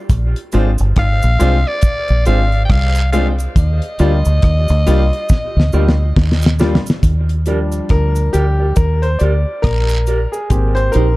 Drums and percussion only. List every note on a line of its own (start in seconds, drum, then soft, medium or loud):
0.09 kick loud
0.09 closed hi-hat loud
0.09 cabasa medium
0.36 closed hi-hat medium
0.52 closed hi-hat medium
0.52 cabasa medium
0.78 closed hi-hat soft
0.78 cabasa medium
0.96 kick loud
0.96 cross-stick loud
0.96 closed hi-hat medium
1.22 closed hi-hat soft
1.22 cabasa medium
1.40 closed hi-hat medium
1.40 cabasa medium
1.81 kick loud
1.81 closed hi-hat loud
1.81 cabasa medium
2.08 closed hi-hat medium
2.25 closed hi-hat medium
2.25 cabasa medium
2.52 closed hi-hat soft
2.70 kick loud
2.70 cross-stick loud
2.70 closed hi-hat medium
2.70 long guiro medium
2.95 closed hi-hat medium
2.95 cabasa medium
3.13 closed hi-hat medium
3.13 cabasa medium
3.39 closed hi-hat soft
3.39 cabasa medium
3.56 kick loud
3.56 closed hi-hat loud
3.56 cabasa medium
3.82 closed hi-hat medium
3.99 closed hi-hat medium
3.99 cabasa soft
4.25 cabasa medium
4.42 kick loud
4.42 cross-stick loud
4.42 closed hi-hat medium
4.68 closed hi-hat soft
4.68 cabasa medium
4.87 closed hi-hat medium
4.87 cabasa medium
5.13 closed hi-hat soft
5.29 kick loud
5.29 snare medium
5.29 cabasa medium
5.60 snare medium
5.72 cabasa medium
5.89 snare medium
6.16 kick loud
6.16 snare medium
6.16 long guiro medium
6.32 snare medium
6.42 cabasa medium
6.46 snare loud
6.59 snare medium
6.59 cabasa medium
6.75 snare loud
6.86 snare medium
6.86 cabasa medium
7.03 kick loud
7.03 closed hi-hat loud
7.03 cabasa medium
7.29 closed hi-hat medium
7.46 closed hi-hat medium
7.46 cabasa soft
7.72 closed hi-hat soft
7.72 cabasa medium
7.89 kick loud
7.89 cross-stick loud
7.89 closed hi-hat medium
8.15 closed hi-hat soft
8.15 cabasa medium
8.34 closed hi-hat medium
8.34 cabasa medium
8.76 kick loud
8.76 closed hi-hat medium
8.76 cabasa medium
9.03 closed hi-hat soft
9.19 closed hi-hat medium
9.19 cabasa medium
9.63 kick loud
9.63 cross-stick loud
9.63 closed hi-hat medium
9.63 long guiro medium
9.89 closed hi-hat soft
9.89 cabasa medium
10.06 closed hi-hat medium
10.06 cabasa medium
10.33 cabasa medium
10.50 kick loud
10.50 closed hi-hat loud
10.50 cabasa medium
10.77 closed hi-hat medium
10.93 closed hi-hat medium
10.93 cabasa soft